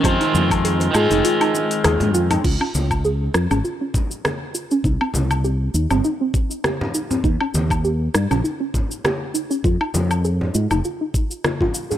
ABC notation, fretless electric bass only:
X:1
M:4/4
L:1/16
Q:"Swing 16ths" 1/4=100
K:Dblyd
V:1 name="Fretless electric bass" clef=bass
F,, z F,,3 z A,, F,,, z4 E,, A,, F,, z | D,, z D,,3 z F,, A,,, z8 | C,, z C,,3 z E,, G,,, z8 | E,, z E,,3 z G,, B,,, z8 |
F,, z F,,3 z A,, F,,, z8 |]